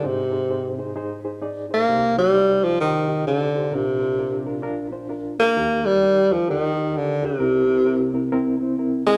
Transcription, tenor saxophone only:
X:1
M:4/4
L:1/8
Q:"Swing" 1/4=130
K:Cm
V:1 name="Tenor saxophone" clef=bass
C,4 z3 B,- | B, G,2 F, E,2 D,2 | C,4 z3 B,- | B, G,2 F, E,2 D, C,- |
C,4 z3 A, |]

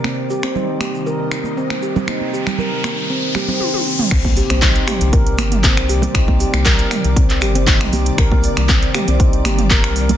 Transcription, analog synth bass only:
X:1
M:4/4
L:1/16
Q:1/4=118
K:Cm
V:1 name="Analog synth bass" clef=bass
z16 | z16 | C,,2 z C,,2 z2 C,,3 G,,,3 C,,2 z | C,,2 z C,,2 z2 C,,3 G,,,3 C,,2 z |
C,,2 z C,,2 z2 C,,3 G,,,3 C,,2 z |]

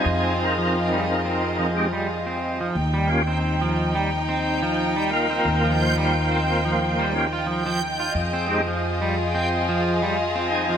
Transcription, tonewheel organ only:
X:1
M:4/4
L:1/8
Q:"Swing 16ths" 1/4=89
K:Fm
V:1 name="Tonewheel organ"
[CEa] [CEB]4 [A,CEG] z2 | z [B,DFG] z4 z [B,FB]- | [B,FB] [B,Fc]4 [B,DFG] z2 | z [A,CEG] z4 z [CEa] |]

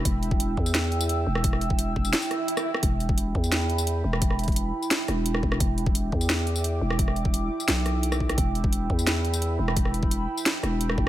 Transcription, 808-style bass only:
X:1
M:4/4
L:1/8
Q:1/4=173
K:Em
V:1 name="808-style bass" clef=bass
E,,,3 E,,4 E,,,- | E,,,3 E,,, z4 | E,,,3 E,,4 E,,,- | E,,,3 z2 E,,,2 E,,, |
E,,,3 E,,4 E,,,- | E,,,3 z B,,,4 | E,,,3 E,,4 E,,,- | E,,,3 z2 E,,,2 E,,, |]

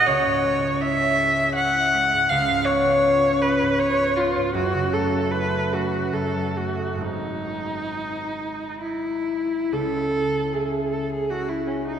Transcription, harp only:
X:1
M:3/4
L:1/16
Q:1/4=78
K:C#m
V:1 name="Harp"
[C,,_D_d] G,, G, C E G c G c E G, G,, | C,, G,, B, C ^E C B, G,, B, E B, G,, | [F,,,F,,] C, A, C E C A, C, F,, F, A, D | [G,,,G,,G,^B,D]12 |
[C,,C,]4 [G,CE]4 [G,CE]4 |]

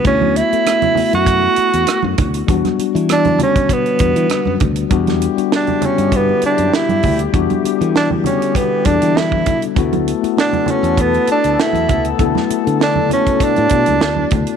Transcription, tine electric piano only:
X:1
M:4/4
L:1/16
Q:"Swing 16ths" 1/4=99
K:Edor
V:1 name="Tine electric piano"
[A,B,EF]3 [A,B,EA]3 [A,B,EF]6- [A,B,EF] z3 | [G,B,DF]3 [G,B,DF]3 [D,G,B,F]4 [G,B,DF]4- [G,B,DF] z | [G,B,DF]3 [G,B,DF]3 [D,G,B,F]6- [D,G,B,F] z3 | [G,B,DF]3 [G,B,DA]3 [D,G,B,F]4 [G,B,DA]4- [G,B,DA] z |
[A,B,EF]3 [A,B,EF]3 [A,B,EF]6- [A,B,EF] z3 | [A,B,EA]3 [A,B,EA]3 [A,B,EF]4 [A,B,EF]4- [A,B,EF] z |]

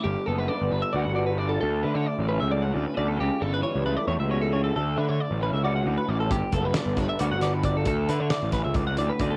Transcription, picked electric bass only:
X:1
M:7/8
L:1/16
Q:1/4=134
K:D
V:1 name="Picked electric bass" clef=bass
G,,, z F,,,2 z G,,, G,,, z D,, G,,,4- G,,, | D,,2 D, D, z A,,,2 C,,3 D,, z D,,2 | C,, z G,,,2 z C,, C,, z E,, C,,4- C,, | D,,2 D, D, z A,,,2 C,,3 D,, z A,,,2 |
G,,, z F,,,2 z G,,, G,,, z D,, G,,,4- G,,, | D,,2 D, D, z A,,,2 C,,3 D,, z D,,2 |]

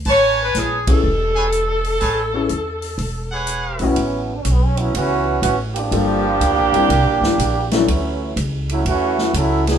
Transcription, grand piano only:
X:1
M:4/4
L:1/8
Q:"Swing" 1/4=123
K:A
V:1 name="Grand piano"
z3 [B,CEG] z4 | z [B,CEG] z4 z [A,,B,CEF] | z8 | [=G,_B,D=FA] z2 [G,=CDE_B] z3 [^F,^CDEA] |
z8 |]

